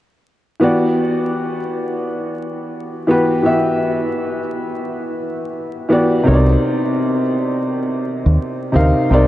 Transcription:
0.60 E3 B3 F#4 G4 D5
3.07 E3 B3 F#4 G4 B4
3.43 E3 B3 F#4 G4 E5
5.89 E3 B3 F#4 G4 D5
6.23 C3 C4 D#4 A#4 C#5
6.28 C2
6.33 D5
8.26 D#2
8.72 D2 C3 C4 D#4 A#4 F5
9.10 C2 C3 C4 D#4 A#4 D5

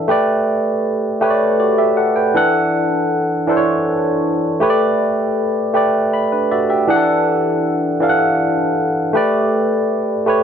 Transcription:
Already playing: E3 D4 A4 E5
0.08 A3 G4 B4 D5
1.21 A3 G4 B4 C#5
1.30 D5
1.60 F#4 D5
1.78 G4 E5
1.97 A4 F#5
2.16 B4 G5
2.34 E3 D4 A4 F#5
3.47 E3 D4 A4 C5
3.57 C#5
4.60 A3 G4 B4 C#5
4.70 D5
5.74 A3 G4 B4 D5
6.13 B5
6.32 D4 B4
6.51 F#4 D5 E5
6.70 G4 E5
6.87 E3 D4 G#4 F#5
6.96 A4
8.00 E3 D4 A4 F5
8.09 F#5
9.13 A3 G4 B4 D5
10.26 A3 G4 B4 C#5

